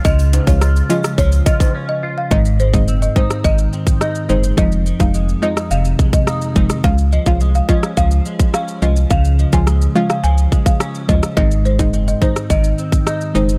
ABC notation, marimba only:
X:1
M:4/4
L:1/16
Q:1/4=106
K:Db
V:1 name="Marimba"
e z2 d z2 e z d z e z2 e z f | e z c e z e c z e3 z e z c z | e z2 f z2 e e f z2 e z4 | f z e f z f e z f3 z f z e z |
f z2 a z2 f f a z2 f z2 e z | e z c e z e c z e3 z e z c z |]